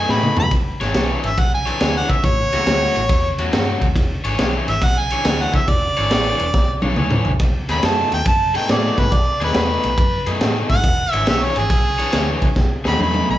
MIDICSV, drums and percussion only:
0, 0, Header, 1, 2, 480
1, 0, Start_track
1, 0, Tempo, 430416
1, 573, Time_signature, 4, 2, 24, 8
1, 14926, End_track
2, 0, Start_track
2, 0, Title_t, "Drums"
2, 100, Note_on_c, 9, 38, 63
2, 211, Note_off_c, 9, 38, 0
2, 259, Note_on_c, 9, 47, 76
2, 370, Note_off_c, 9, 47, 0
2, 408, Note_on_c, 9, 43, 107
2, 520, Note_off_c, 9, 43, 0
2, 571, Note_on_c, 9, 51, 84
2, 572, Note_on_c, 9, 36, 104
2, 576, Note_on_c, 9, 38, 31
2, 683, Note_off_c, 9, 51, 0
2, 684, Note_off_c, 9, 36, 0
2, 687, Note_off_c, 9, 38, 0
2, 900, Note_on_c, 9, 51, 62
2, 904, Note_on_c, 9, 38, 33
2, 1011, Note_off_c, 9, 51, 0
2, 1016, Note_off_c, 9, 38, 0
2, 1052, Note_on_c, 9, 51, 84
2, 1056, Note_on_c, 9, 38, 118
2, 1163, Note_off_c, 9, 51, 0
2, 1168, Note_off_c, 9, 38, 0
2, 1377, Note_on_c, 9, 51, 60
2, 1489, Note_off_c, 9, 51, 0
2, 1536, Note_on_c, 9, 36, 127
2, 1536, Note_on_c, 9, 51, 89
2, 1541, Note_on_c, 9, 38, 34
2, 1647, Note_off_c, 9, 36, 0
2, 1648, Note_off_c, 9, 51, 0
2, 1652, Note_off_c, 9, 38, 0
2, 1860, Note_on_c, 9, 51, 59
2, 1972, Note_off_c, 9, 51, 0
2, 2013, Note_on_c, 9, 51, 82
2, 2017, Note_on_c, 9, 38, 116
2, 2124, Note_off_c, 9, 51, 0
2, 2129, Note_off_c, 9, 38, 0
2, 2335, Note_on_c, 9, 51, 58
2, 2337, Note_on_c, 9, 36, 79
2, 2446, Note_off_c, 9, 51, 0
2, 2448, Note_off_c, 9, 36, 0
2, 2493, Note_on_c, 9, 51, 79
2, 2495, Note_on_c, 9, 36, 110
2, 2604, Note_off_c, 9, 51, 0
2, 2607, Note_off_c, 9, 36, 0
2, 2817, Note_on_c, 9, 51, 59
2, 2822, Note_on_c, 9, 38, 35
2, 2929, Note_off_c, 9, 51, 0
2, 2933, Note_off_c, 9, 38, 0
2, 2974, Note_on_c, 9, 51, 90
2, 2978, Note_on_c, 9, 38, 117
2, 3085, Note_off_c, 9, 51, 0
2, 3090, Note_off_c, 9, 38, 0
2, 3296, Note_on_c, 9, 51, 62
2, 3408, Note_off_c, 9, 51, 0
2, 3450, Note_on_c, 9, 36, 127
2, 3451, Note_on_c, 9, 51, 94
2, 3455, Note_on_c, 9, 38, 38
2, 3562, Note_off_c, 9, 36, 0
2, 3562, Note_off_c, 9, 51, 0
2, 3567, Note_off_c, 9, 38, 0
2, 3774, Note_on_c, 9, 51, 65
2, 3885, Note_off_c, 9, 51, 0
2, 3935, Note_on_c, 9, 51, 94
2, 3939, Note_on_c, 9, 38, 116
2, 4046, Note_off_c, 9, 51, 0
2, 4051, Note_off_c, 9, 38, 0
2, 4255, Note_on_c, 9, 36, 75
2, 4256, Note_on_c, 9, 51, 66
2, 4366, Note_off_c, 9, 36, 0
2, 4368, Note_off_c, 9, 51, 0
2, 4411, Note_on_c, 9, 36, 111
2, 4414, Note_on_c, 9, 51, 93
2, 4418, Note_on_c, 9, 38, 32
2, 4523, Note_off_c, 9, 36, 0
2, 4525, Note_off_c, 9, 51, 0
2, 4530, Note_off_c, 9, 38, 0
2, 4734, Note_on_c, 9, 51, 72
2, 4845, Note_off_c, 9, 51, 0
2, 4891, Note_on_c, 9, 51, 89
2, 4895, Note_on_c, 9, 38, 118
2, 5002, Note_off_c, 9, 51, 0
2, 5007, Note_off_c, 9, 38, 0
2, 5218, Note_on_c, 9, 51, 67
2, 5330, Note_off_c, 9, 51, 0
2, 5372, Note_on_c, 9, 36, 120
2, 5374, Note_on_c, 9, 51, 97
2, 5378, Note_on_c, 9, 38, 36
2, 5483, Note_off_c, 9, 36, 0
2, 5486, Note_off_c, 9, 51, 0
2, 5490, Note_off_c, 9, 38, 0
2, 5692, Note_on_c, 9, 51, 65
2, 5804, Note_off_c, 9, 51, 0
2, 5852, Note_on_c, 9, 51, 87
2, 5856, Note_on_c, 9, 38, 117
2, 5963, Note_off_c, 9, 51, 0
2, 5968, Note_off_c, 9, 38, 0
2, 6171, Note_on_c, 9, 51, 61
2, 6174, Note_on_c, 9, 36, 78
2, 6176, Note_on_c, 9, 38, 32
2, 6283, Note_off_c, 9, 51, 0
2, 6285, Note_off_c, 9, 36, 0
2, 6287, Note_off_c, 9, 38, 0
2, 6332, Note_on_c, 9, 51, 78
2, 6333, Note_on_c, 9, 36, 111
2, 6336, Note_on_c, 9, 38, 32
2, 6443, Note_off_c, 9, 51, 0
2, 6445, Note_off_c, 9, 36, 0
2, 6448, Note_off_c, 9, 38, 0
2, 6654, Note_on_c, 9, 51, 63
2, 6765, Note_off_c, 9, 51, 0
2, 6810, Note_on_c, 9, 51, 87
2, 6814, Note_on_c, 9, 38, 122
2, 6921, Note_off_c, 9, 51, 0
2, 6926, Note_off_c, 9, 38, 0
2, 7132, Note_on_c, 9, 51, 63
2, 7244, Note_off_c, 9, 51, 0
2, 7292, Note_on_c, 9, 36, 120
2, 7295, Note_on_c, 9, 38, 68
2, 7404, Note_off_c, 9, 36, 0
2, 7407, Note_off_c, 9, 38, 0
2, 7605, Note_on_c, 9, 48, 79
2, 7717, Note_off_c, 9, 48, 0
2, 7765, Note_on_c, 9, 47, 76
2, 7877, Note_off_c, 9, 47, 0
2, 7924, Note_on_c, 9, 45, 99
2, 8036, Note_off_c, 9, 45, 0
2, 8084, Note_on_c, 9, 43, 89
2, 8195, Note_off_c, 9, 43, 0
2, 8246, Note_on_c, 9, 51, 89
2, 8251, Note_on_c, 9, 36, 112
2, 8251, Note_on_c, 9, 38, 33
2, 8358, Note_off_c, 9, 51, 0
2, 8362, Note_off_c, 9, 36, 0
2, 8362, Note_off_c, 9, 38, 0
2, 8572, Note_on_c, 9, 51, 71
2, 8577, Note_on_c, 9, 38, 35
2, 8684, Note_off_c, 9, 51, 0
2, 8688, Note_off_c, 9, 38, 0
2, 8728, Note_on_c, 9, 51, 96
2, 8732, Note_on_c, 9, 38, 114
2, 8840, Note_off_c, 9, 51, 0
2, 8844, Note_off_c, 9, 38, 0
2, 9055, Note_on_c, 9, 51, 69
2, 9166, Note_off_c, 9, 51, 0
2, 9206, Note_on_c, 9, 51, 103
2, 9210, Note_on_c, 9, 36, 125
2, 9318, Note_off_c, 9, 51, 0
2, 9321, Note_off_c, 9, 36, 0
2, 9532, Note_on_c, 9, 51, 66
2, 9643, Note_off_c, 9, 51, 0
2, 9692, Note_on_c, 9, 51, 85
2, 9697, Note_on_c, 9, 38, 117
2, 9804, Note_off_c, 9, 51, 0
2, 9808, Note_off_c, 9, 38, 0
2, 10013, Note_on_c, 9, 36, 83
2, 10013, Note_on_c, 9, 51, 60
2, 10017, Note_on_c, 9, 38, 31
2, 10124, Note_off_c, 9, 36, 0
2, 10124, Note_off_c, 9, 51, 0
2, 10129, Note_off_c, 9, 38, 0
2, 10170, Note_on_c, 9, 36, 114
2, 10170, Note_on_c, 9, 51, 79
2, 10174, Note_on_c, 9, 38, 34
2, 10281, Note_off_c, 9, 36, 0
2, 10281, Note_off_c, 9, 51, 0
2, 10285, Note_off_c, 9, 38, 0
2, 10498, Note_on_c, 9, 51, 64
2, 10503, Note_on_c, 9, 38, 37
2, 10610, Note_off_c, 9, 51, 0
2, 10614, Note_off_c, 9, 38, 0
2, 10642, Note_on_c, 9, 51, 84
2, 10646, Note_on_c, 9, 38, 125
2, 10753, Note_off_c, 9, 51, 0
2, 10758, Note_off_c, 9, 38, 0
2, 10967, Note_on_c, 9, 51, 63
2, 11079, Note_off_c, 9, 51, 0
2, 11126, Note_on_c, 9, 36, 127
2, 11130, Note_on_c, 9, 51, 92
2, 11238, Note_off_c, 9, 36, 0
2, 11241, Note_off_c, 9, 51, 0
2, 11446, Note_on_c, 9, 51, 62
2, 11557, Note_off_c, 9, 51, 0
2, 11606, Note_on_c, 9, 51, 83
2, 11611, Note_on_c, 9, 38, 124
2, 11718, Note_off_c, 9, 51, 0
2, 11722, Note_off_c, 9, 38, 0
2, 11929, Note_on_c, 9, 36, 85
2, 11931, Note_on_c, 9, 51, 65
2, 12040, Note_off_c, 9, 36, 0
2, 12042, Note_off_c, 9, 51, 0
2, 12085, Note_on_c, 9, 51, 91
2, 12086, Note_on_c, 9, 36, 115
2, 12196, Note_off_c, 9, 51, 0
2, 12198, Note_off_c, 9, 36, 0
2, 12412, Note_on_c, 9, 51, 68
2, 12524, Note_off_c, 9, 51, 0
2, 12566, Note_on_c, 9, 51, 95
2, 12570, Note_on_c, 9, 38, 126
2, 12677, Note_off_c, 9, 51, 0
2, 12682, Note_off_c, 9, 38, 0
2, 12888, Note_on_c, 9, 51, 68
2, 13000, Note_off_c, 9, 51, 0
2, 13047, Note_on_c, 9, 51, 100
2, 13048, Note_on_c, 9, 36, 125
2, 13052, Note_on_c, 9, 38, 36
2, 13159, Note_off_c, 9, 36, 0
2, 13159, Note_off_c, 9, 51, 0
2, 13163, Note_off_c, 9, 38, 0
2, 13374, Note_on_c, 9, 51, 68
2, 13486, Note_off_c, 9, 51, 0
2, 13522, Note_on_c, 9, 51, 97
2, 13527, Note_on_c, 9, 38, 115
2, 13634, Note_off_c, 9, 51, 0
2, 13638, Note_off_c, 9, 38, 0
2, 13848, Note_on_c, 9, 51, 66
2, 13851, Note_on_c, 9, 36, 84
2, 13960, Note_off_c, 9, 51, 0
2, 13962, Note_off_c, 9, 36, 0
2, 14007, Note_on_c, 9, 38, 70
2, 14008, Note_on_c, 9, 36, 112
2, 14119, Note_off_c, 9, 38, 0
2, 14120, Note_off_c, 9, 36, 0
2, 14331, Note_on_c, 9, 38, 75
2, 14443, Note_off_c, 9, 38, 0
2, 14491, Note_on_c, 9, 48, 73
2, 14602, Note_off_c, 9, 48, 0
2, 14657, Note_on_c, 9, 48, 77
2, 14768, Note_off_c, 9, 48, 0
2, 14926, End_track
0, 0, End_of_file